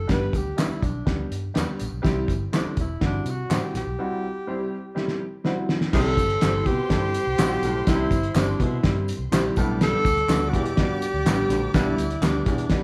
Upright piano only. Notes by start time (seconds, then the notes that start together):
0.07 G3 B3 D4 G4
0.57 G3 B3 D4 G4
1.06 G3 B3 D4 G4
1.54 G3 B3 D4 G4
2.02 G3 C4 E4 G4
2.52 G3 C4 E4 A4
3.01 G3 C4 E4 F#4
3.49 G3 C4 E4 F#4
3.99 G3 C4 E4 F#4
4.47 G3 C4 E4 G4
4.95 G3 C4 E4 G4
5.45 G3 C4 E4 F#4
5.93 G3 C4 E4 G4
6.42 G3 C4 E4 G4
6.89 G3 C4 E4 A4
7.38 G3 C4 E4 F#4
7.87 G3 C4 E4 G4
8.36 G3 C4 E4 G4
8.83 G3 C4 E4 G4
9.32 G3 C4 E4 G4
9.57 G3 B3 D4 G4
10.30 G3 B3 D4 F#4
10.79 G3 B3 D4 F#4
11.26 G3 B3 D4 G4
11.74 G3 B3 D4 G4
12.23 G3 B3 D4 G4
12.71 G3 B3 D4 G4